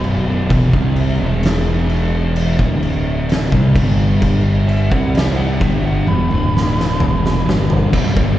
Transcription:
0.00 0.47 B0 loud
0.00 0.49 B1 loud
0.00 0.49 F#2 loud
0.00 0.50 B2 loud
0.00 0.46 B5 loud
0.00 crash medium
0.50 0.72 E1 medium
0.50 0.72 E2 loud
0.50 0.73 B2 loud
0.50 kick loud
0.50 crash medium
0.73 1.17 C2 loud
0.73 1.19 C3 medium
0.73 1.19 G3 loud
0.73 1.19 C4 loud
0.73 kick loud
0.96 crash medium
1.20 2.55 E1 medium
1.20 2.59 E2 loud
1.20 2.60 B2 loud
1.20 2.61 E3 loud
1.43 snare loud
1.43 crash medium
1.89 crash medium
2.36 crash medium
2.59 3.48 D1 loud
2.59 3.51 D2 loud
2.59 3.51 A2 loud
2.59 3.51 D3 loud
2.59 kick loud
2.83 crash medium
3.29 snare loud
3.29 crash medium
3.52 3.74 C2 loud
3.52 3.74 C3 loud
3.52 3.74 G3 loud
3.52 kick loud
3.75 4.88 G1 loud
3.75 4.90 G2 medium
3.75 4.90 D3 loud
3.75 4.91 G3 loud
3.75 kick loud
3.75 crash loud
4.22 kick loud
4.22 crash medium
4.69 4.90 E5 loud
4.69 crash medium
4.91 5.57 C2 loud
4.91 5.60 C3 medium
4.91 5.60 G3 loud
4.91 5.60 C4 loud
4.91 5.14 F#5 loud
4.91 kick loud
5.15 5.36 E5 loud
5.15 snare loud
5.15 crash medium
5.37 5.60 F#5 loud
5.61 6.04 G1 medium
5.61 6.06 G2 medium
5.61 6.06 D3 medium
5.61 6.07 G3 loud
5.61 5.84 E5 loud
5.61 kick loud
5.61 crash medium
5.85 6.07 F#5 loud
6.07 6.29 E1 medium
6.07 6.29 E2 medium
6.07 6.30 B2 loud
6.07 7.90 B5 loud
6.07 high tom medium
6.30 6.97 D1 loud
6.30 6.99 D2 loud
6.30 6.99 A2 loud
6.30 6.99 D3 loud
6.30 high tom medium
6.57 snare medium
6.80 snare medium
7.00 7.44 E1 medium
7.00 7.45 E2 medium
7.00 7.46 B2 loud
7.00 7.46 E3 medium
7.00 mid tom medium
7.26 snare medium
7.46 7.91 G1 loud
7.46 7.92 G2 medium
7.46 7.92 D3 medium
7.46 7.92 G3 loud
7.46 snare loud
7.70 floor tom medium
7.93 8.15 B0 medium
7.93 8.15 B1 loud
7.93 8.15 F#2 loud
7.93 kick loud
7.93 crash loud
7.93 crash medium
8.16 8.39 G1 loud
8.16 8.39 G2 medium
8.16 8.39 D3 loud
8.16 8.39 G3 loud
8.16 kick loud

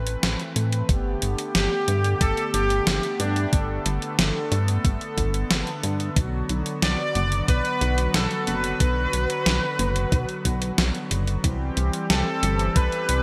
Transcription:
0.00 0.17 A1 loud
0.00 0.85 E3 medium
0.00 0.85 A3 medium
0.00 0.85 C4 medium
0.00 0.86 B4 medium
0.07 closed hi-hat medium
0.23 0.37 A1 medium
0.23 snare loud
0.23 closed hi-hat medium
0.40 closed hi-hat soft
0.56 0.83 A2 medium
0.56 closed hi-hat medium
0.72 closed hi-hat medium
0.89 1.16 G1 loud
0.89 11.40 D3 medium
0.89 6.13 A3 medium
0.89 11.40 B3 medium
0.89 3.50 G4 medium
0.89 kick loud
0.89 closed hi-hat medium
1.22 1.35 G1 medium
1.22 closed hi-hat medium
1.38 closed hi-hat medium
1.55 1.68 G1 medium
1.55 2.23 G4 loud
1.55 snare loud
1.55 closed hi-hat medium
1.88 2.15 G2 loud
1.88 closed hi-hat medium
2.04 closed hi-hat medium
2.21 2.34 G1 medium
2.21 2.55 A4 loud
2.21 kick loud
2.21 closed hi-hat medium
2.37 closed hi-hat soft
2.54 2.81 G1 loud
2.54 3.16 G4 loud
2.54 closed hi-hat medium
2.70 closed hi-hat medium
2.87 3.00 G1 medium
2.87 snare loud
2.87 closed hi-hat medium
3.03 closed hi-hat soft
3.20 3.47 G2 medium
3.20 3.82 D4 medium
3.20 closed hi-hat medium
3.36 closed hi-hat medium
3.53 3.80 G1 loud
3.53 6.14 A4 medium
3.53 kick loud
3.53 closed hi-hat medium
3.86 3.99 G1 medium
3.86 closed hi-hat medium
4.02 closed hi-hat soft
4.19 4.32 G1 medium
4.19 snare loud
4.19 closed hi-hat medium
4.52 4.78 G2 loud
4.52 closed hi-hat medium
4.68 closed hi-hat medium
4.85 4.98 G1 medium
4.85 kick loud
4.85 closed hi-hat medium
5.01 closed hi-hat soft
5.18 5.44 G1 loud
5.18 kick medium
5.18 closed hi-hat medium
5.34 closed hi-hat medium
5.50 5.64 G1 medium
5.50 snare loud
5.50 closed hi-hat medium
5.67 closed hi-hat soft
5.83 6.10 G2 medium
5.83 closed hi-hat medium
6.00 closed hi-hat medium
6.16 6.43 B1 loud
6.16 11.40 F#3 medium
6.16 11.40 F#4 medium
6.16 kick loud
6.16 closed hi-hat medium
6.49 6.63 B1 medium
6.49 closed hi-hat medium
6.66 closed hi-hat soft
6.82 6.96 B1 loud
6.82 7.44 D5 loud
6.82 snare loud
6.82 closed hi-hat medium
7.15 7.42 F#1 loud
7.15 closed hi-hat medium
7.32 closed hi-hat soft
7.48 7.62 B1 medium
7.48 8.10 B4 loud
7.48 kick loud
7.48 closed hi-hat medium
7.65 closed hi-hat soft
7.81 8.08 B1 loud
7.81 closed hi-hat medium
7.98 closed hi-hat soft
8.14 8.28 B1 medium
8.14 8.45 A4 loud
8.14 snare loud
8.14 closed hi-hat medium
8.31 closed hi-hat soft
8.47 8.74 F#1 medium
8.47 11.07 B4 loud
8.47 closed hi-hat medium
8.64 closed hi-hat soft
8.80 9.07 B1 loud
8.80 kick loud
8.80 closed hi-hat medium
9.13 9.27 B1 medium
9.13 closed hi-hat medium
9.30 closed hi-hat soft
9.46 9.60 B1 medium
9.46 snare loud
9.46 closed hi-hat medium
9.79 10.06 F#1 loud
9.79 closed hi-hat medium
9.96 closed hi-hat soft
10.12 10.26 B1 medium
10.12 kick loud
10.12 closed hi-hat medium
10.29 closed hi-hat soft
10.45 10.72 B1 loud
10.45 kick medium
10.45 closed hi-hat medium
10.62 closed hi-hat soft
10.78 10.91 B1 medium
10.78 snare loud
10.78 closed hi-hat medium
10.95 closed hi-hat soft
11.11 11.38 F#1 medium
11.11 closed hi-hat medium
11.27 closed hi-hat soft
11.44 11.71 C2 loud
11.44 13.23 E3 medium
11.44 13.23 G3 medium
11.44 13.23 C4 medium
11.44 13.23 G4 medium
11.44 kick loud
11.44 closed hi-hat medium
11.77 11.90 C2 medium
11.77 closed hi-hat medium
11.93 closed hi-hat soft
12.10 12.23 C2 medium
12.10 12.72 A4 loud
12.10 snare loud
12.10 closed hi-hat medium
12.43 12.70 G1 loud
12.43 closed hi-hat medium
12.59 closed hi-hat medium
12.76 12.89 C2 medium
12.76 13.23 B4 loud
12.76 kick loud
12.76 closed hi-hat medium
12.92 closed hi-hat soft
13.09 13.23 C2 loud
13.09 closed hi-hat medium

